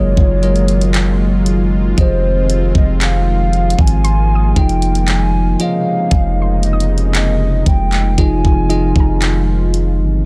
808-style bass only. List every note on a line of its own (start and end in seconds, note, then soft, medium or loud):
0.00 0.15 F#1 loud
0.17 1.94 F#1 loud
1.98 2.72 F1 loud
2.75 3.75 F1 loud
3.79 4.53 G#1 loud
4.56 5.56 F1 loud
6.11 7.63 F1 loud
7.66 8.16 F1 loud
8.18 8.93 F1 loud
8.96 10.01 F1 loud
9.99 10.24 G1 loud